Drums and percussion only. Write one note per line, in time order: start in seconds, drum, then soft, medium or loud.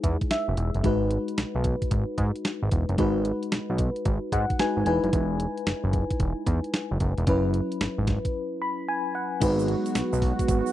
0.04 kick medium
0.04 closed hi-hat medium
0.21 kick medium
0.21 closed hi-hat soft
0.31 snare loud
0.31 closed hi-hat medium
0.57 closed hi-hat medium
0.74 closed hi-hat soft
0.84 kick loud
0.84 closed hi-hat medium
1.11 closed hi-hat medium
1.28 closed hi-hat medium
1.38 snare medium
1.38 closed hi-hat medium
1.64 kick medium
1.64 closed hi-hat medium
1.82 kick medium
1.82 closed hi-hat soft
1.91 kick medium
1.91 closed hi-hat medium
2.18 kick medium
2.18 closed hi-hat medium
2.36 closed hi-hat soft
2.45 snare loud
2.45 closed hi-hat medium
2.71 kick medium
2.71 closed hi-hat medium
2.89 closed hi-hat soft
2.98 kick loud
2.98 closed hi-hat medium
3.25 closed hi-hat medium
3.43 closed hi-hat medium
3.52 snare loud
3.52 closed hi-hat medium
3.78 kick medium
3.78 closed hi-hat medium
3.96 closed hi-hat soft
4.05 kick medium
4.05 closed hi-hat medium
4.32 kick medium
4.32 closed hi-hat medium
4.50 kick medium
4.50 closed hi-hat soft
4.59 snare loud
4.59 closed hi-hat medium
4.86 closed hi-hat medium
5.04 closed hi-hat soft
5.13 kick loud
5.13 closed hi-hat medium
5.40 closed hi-hat medium
5.58 closed hi-hat medium
5.67 snare loud
5.67 closed hi-hat medium
5.93 kick medium
5.93 closed hi-hat medium
6.10 kick medium
6.10 closed hi-hat medium
6.20 kick medium
6.20 closed hi-hat medium
6.47 kick medium
6.47 closed hi-hat medium
6.64 closed hi-hat soft
6.74 snare loud
6.74 closed hi-hat medium
7.00 kick medium
7.00 closed hi-hat medium
7.18 closed hi-hat soft
7.27 kick loud
7.27 closed hi-hat medium
7.54 closed hi-hat medium
7.72 closed hi-hat medium
7.81 snare loud
7.81 closed hi-hat medium
8.07 kick medium
8.07 snare medium
8.07 closed hi-hat medium
8.25 kick medium
8.25 closed hi-hat medium
9.42 kick loud
9.42 closed hi-hat medium
9.42 crash loud
9.42 shaker medium
9.59 shaker medium
9.68 closed hi-hat medium
9.86 closed hi-hat medium
9.86 shaker soft
9.95 snare loud
9.95 closed hi-hat medium
9.95 shaker medium
10.13 shaker medium
10.22 kick medium
10.22 open hi-hat medium
10.39 kick medium
10.39 closed hi-hat medium
10.39 shaker medium
10.48 kick loud
10.48 closed hi-hat medium
10.48 shaker medium
10.66 shaker soft